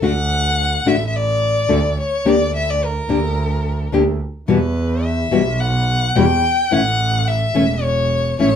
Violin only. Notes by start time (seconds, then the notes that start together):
0.03 F#5
0.87 E5
1.07 E5
1.15 D5
2.00 C#5
2.28 D5
2.56 E5
2.70 D5
2.84 A#4
4.49 B4
5.04 E5
5.60 F#5
6.15 G5
6.72 F#5
7.27 E5
7.83 C#5
8.39 C#5